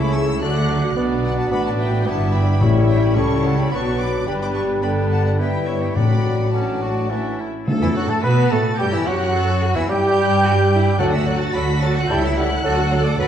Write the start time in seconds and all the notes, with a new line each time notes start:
Already playing: C#2 C#3 A3 E4 G#4 C#5
0.00 A3 E4 A4 C#5 B5 D6
0.13 E3 C#4 C#5 E5 C#6 E6
0.27 A3 E4 A4 C#5
0.41 D2 D3 F#3 A3 D4 F#4 D5 D6 F#6
0.55 A3 D4 A4 F#5
0.69 F#3 F#4 D5
0.82 A3 D4 A4 F#5
0.96 B1 B2 B3 D4 B4 D5
1.24 D5 F#5
1.37 F#5 A5
1.51 A1 A2 B3 D4 F#4 D5 F#5 B5
1.64 F#5 A5
1.78 E5 G5
2.05 G1 G2 B3 D4 E4 B4 D5 E5 F#5 A5
2.33 G5 B5
2.61 A1 A2 G3 C#4 E4 C#5 E5
2.89 E5 G5
3.02 G5 B5
3.15 C#2 C#3 G3 E4 A4 C#5 A5 C#6
3.44 F#5 A5
3.58 G5 B5
3.72 B1 B2 F#3 B3 D4 F#4 B4 D5 A5 C#6
3.99 B5 D6
4.27 G1 G2 G3 B3 D4 G4 B4 G5 B5
4.40 B5 D6
4.55 A5 C#6
4.82 G3 B3 D4 G4 A4 B4 G5 B5
5.11 F#5 A5
5.25 D5 F#5
5.38 G3 B3 E4 G4 B4 E5 G5
5.66 C#5 E5
5.82 E5 G5
5.96 A1 A2 F#3 A3 D4 F#4 D5 G5 B5
6.53 F#3 A3 C#4 D4 F#4 D5 F#5 A5
6.82 F#4
7.10 E3 A3 C#4 D4 E4 C#5 E5
7.40 E4
7.68 D3 A4
7.81 E2 E3 E4 E5 E6
7.95 F#2 F#3 F#4 F#5 F#6
8.09 A2 A3 A4 A5 A6
8.22 B2 B3 F#4 B4 B5 B6
8.50 A2 A3 A4 A5 A6
8.77 G2 G3 G4 G5 G6
8.92 E2 E3 E4 E5 E6
9.06 F#2 F#3 F#4 F#5 F#6
9.35 A4
9.63 F#4
9.74 E2 E3 E4 E5 E6
9.88 G2 G3 E4 G4 G5 G6
10.17 G4
10.44 F#4
10.72 E4
10.98 D2 D3 F#3 A3 D4 F#4 A4 D5 F#5 F#6
11.12 A3 D4 A4 E5 F#5 E6
11.25 F#3 D4 F#4 A4 D5 F#5 F#6
11.40 A3 D4 A4 F#5 A5 A6
11.53 D2 F#3 D4 F#4 A4 D5 B5 B6
11.68 A3 D4 A4 F#5
11.81 F#3 D4 F#4 A4 D5 A5 A6
11.95 A3 D4 A4 F#5 F#6
12.09 C#2 G3 E4 G4 A4 C#5 E5 G5 G6
12.22 A3 E4 A4 C#5 E5 E6
12.36 G3 E4 G4 A4 C#5 E5 F#5 F#6
12.50 A3 E4 A4 C#5
12.64 D2 F#3 D4 F#4 A4 D5
12.78 A3 D4 A4 F#5
12.91 F#3 D4 F#4 A4 D5
13.05 A3 D4 A4 D5 F#5 D6
13.18 D2 F#3 D4 F#4 A4 B4 D5 F#5 F#6